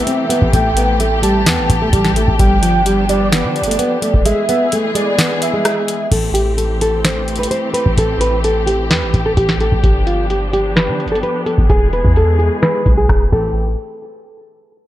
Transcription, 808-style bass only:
0, 0, Header, 1, 2, 480
1, 0, Start_track
1, 0, Key_signature, 0, "minor"
1, 0, Tempo, 465116
1, 551, Time_signature, 4, 2, 24, 8
1, 15346, End_track
2, 0, Start_track
2, 0, Title_t, "808-style bass"
2, 0, Program_c, 0, 38
2, 432, Note_on_c, 0, 33, 107
2, 547, Note_off_c, 0, 33, 0
2, 552, Note_on_c, 0, 33, 109
2, 1512, Note_on_c, 0, 40, 102
2, 1527, Note_off_c, 0, 33, 0
2, 1631, Note_on_c, 0, 33, 99
2, 1647, Note_off_c, 0, 40, 0
2, 1745, Note_off_c, 0, 33, 0
2, 1750, Note_on_c, 0, 33, 106
2, 1981, Note_off_c, 0, 33, 0
2, 1991, Note_on_c, 0, 33, 110
2, 2337, Note_off_c, 0, 33, 0
2, 2351, Note_on_c, 0, 33, 102
2, 2467, Note_off_c, 0, 33, 0
2, 2471, Note_on_c, 0, 31, 109
2, 3552, Note_on_c, 0, 50, 101
2, 3567, Note_off_c, 0, 31, 0
2, 3732, Note_on_c, 0, 31, 99
2, 3747, Note_off_c, 0, 50, 0
2, 3903, Note_off_c, 0, 31, 0
2, 4272, Note_on_c, 0, 28, 102
2, 4387, Note_off_c, 0, 28, 0
2, 6311, Note_on_c, 0, 33, 107
2, 7710, Note_off_c, 0, 33, 0
2, 8111, Note_on_c, 0, 33, 105
2, 8227, Note_off_c, 0, 33, 0
2, 8231, Note_on_c, 0, 33, 104
2, 9191, Note_on_c, 0, 40, 103
2, 9206, Note_off_c, 0, 33, 0
2, 9311, Note_on_c, 0, 33, 102
2, 9326, Note_off_c, 0, 40, 0
2, 9425, Note_off_c, 0, 33, 0
2, 9430, Note_on_c, 0, 33, 106
2, 9661, Note_off_c, 0, 33, 0
2, 9671, Note_on_c, 0, 33, 107
2, 10017, Note_off_c, 0, 33, 0
2, 10031, Note_on_c, 0, 33, 104
2, 10147, Note_off_c, 0, 33, 0
2, 10151, Note_on_c, 0, 31, 104
2, 11231, Note_on_c, 0, 50, 102
2, 11247, Note_off_c, 0, 31, 0
2, 11411, Note_on_c, 0, 31, 99
2, 11426, Note_off_c, 0, 50, 0
2, 11582, Note_off_c, 0, 31, 0
2, 11951, Note_on_c, 0, 31, 105
2, 12067, Note_off_c, 0, 31, 0
2, 12071, Note_on_c, 0, 28, 110
2, 12417, Note_off_c, 0, 28, 0
2, 12431, Note_on_c, 0, 40, 107
2, 12892, Note_off_c, 0, 40, 0
2, 13271, Note_on_c, 0, 35, 105
2, 13501, Note_off_c, 0, 35, 0
2, 13511, Note_on_c, 0, 28, 109
2, 13745, Note_off_c, 0, 28, 0
2, 13751, Note_on_c, 0, 33, 109
2, 14198, Note_off_c, 0, 33, 0
2, 15346, End_track
0, 0, End_of_file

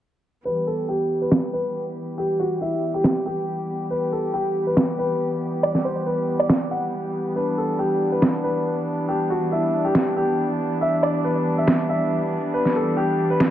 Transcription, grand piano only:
0, 0, Header, 1, 2, 480
1, 0, Start_track
1, 0, Key_signature, 1, "minor"
1, 0, Tempo, 431655
1, 503, Time_signature, 4, 2, 24, 8
1, 15016, End_track
2, 0, Start_track
2, 0, Title_t, "Grand piano"
2, 0, Program_c, 0, 0
2, 504, Note_on_c, 0, 71, 93
2, 715, Note_off_c, 0, 71, 0
2, 743, Note_on_c, 0, 69, 80
2, 955, Note_off_c, 0, 69, 0
2, 983, Note_on_c, 0, 67, 86
2, 1303, Note_off_c, 0, 67, 0
2, 1352, Note_on_c, 0, 71, 85
2, 1662, Note_off_c, 0, 71, 0
2, 1703, Note_on_c, 0, 71, 93
2, 2023, Note_off_c, 0, 71, 0
2, 2422, Note_on_c, 0, 67, 88
2, 2635, Note_off_c, 0, 67, 0
2, 2663, Note_on_c, 0, 66, 82
2, 2875, Note_off_c, 0, 66, 0
2, 2902, Note_on_c, 0, 64, 88
2, 3222, Note_off_c, 0, 64, 0
2, 3270, Note_on_c, 0, 67, 85
2, 3581, Note_off_c, 0, 67, 0
2, 3623, Note_on_c, 0, 67, 90
2, 3943, Note_off_c, 0, 67, 0
2, 4343, Note_on_c, 0, 71, 90
2, 4555, Note_off_c, 0, 71, 0
2, 4582, Note_on_c, 0, 69, 84
2, 4795, Note_off_c, 0, 69, 0
2, 4822, Note_on_c, 0, 67, 90
2, 5143, Note_off_c, 0, 67, 0
2, 5191, Note_on_c, 0, 71, 86
2, 5501, Note_off_c, 0, 71, 0
2, 5544, Note_on_c, 0, 71, 92
2, 5864, Note_off_c, 0, 71, 0
2, 6262, Note_on_c, 0, 74, 90
2, 6475, Note_off_c, 0, 74, 0
2, 6502, Note_on_c, 0, 72, 83
2, 6714, Note_off_c, 0, 72, 0
2, 6743, Note_on_c, 0, 71, 89
2, 7063, Note_off_c, 0, 71, 0
2, 7110, Note_on_c, 0, 74, 91
2, 7420, Note_off_c, 0, 74, 0
2, 7462, Note_on_c, 0, 78, 93
2, 7783, Note_off_c, 0, 78, 0
2, 8183, Note_on_c, 0, 71, 92
2, 8395, Note_off_c, 0, 71, 0
2, 8423, Note_on_c, 0, 69, 81
2, 8635, Note_off_c, 0, 69, 0
2, 8662, Note_on_c, 0, 67, 86
2, 8983, Note_off_c, 0, 67, 0
2, 9030, Note_on_c, 0, 71, 83
2, 9341, Note_off_c, 0, 71, 0
2, 9383, Note_on_c, 0, 71, 90
2, 9703, Note_off_c, 0, 71, 0
2, 10103, Note_on_c, 0, 67, 90
2, 10315, Note_off_c, 0, 67, 0
2, 10343, Note_on_c, 0, 66, 80
2, 10555, Note_off_c, 0, 66, 0
2, 10582, Note_on_c, 0, 64, 89
2, 10902, Note_off_c, 0, 64, 0
2, 10949, Note_on_c, 0, 67, 87
2, 11260, Note_off_c, 0, 67, 0
2, 11303, Note_on_c, 0, 67, 92
2, 11623, Note_off_c, 0, 67, 0
2, 12023, Note_on_c, 0, 76, 94
2, 12235, Note_off_c, 0, 76, 0
2, 12264, Note_on_c, 0, 74, 83
2, 12475, Note_off_c, 0, 74, 0
2, 12504, Note_on_c, 0, 71, 92
2, 12823, Note_off_c, 0, 71, 0
2, 12871, Note_on_c, 0, 76, 84
2, 13181, Note_off_c, 0, 76, 0
2, 13223, Note_on_c, 0, 76, 92
2, 13543, Note_off_c, 0, 76, 0
2, 13942, Note_on_c, 0, 71, 91
2, 14155, Note_off_c, 0, 71, 0
2, 14182, Note_on_c, 0, 69, 79
2, 14394, Note_off_c, 0, 69, 0
2, 14421, Note_on_c, 0, 67, 90
2, 14742, Note_off_c, 0, 67, 0
2, 14791, Note_on_c, 0, 71, 89
2, 15016, Note_off_c, 0, 71, 0
2, 15016, End_track
0, 0, End_of_file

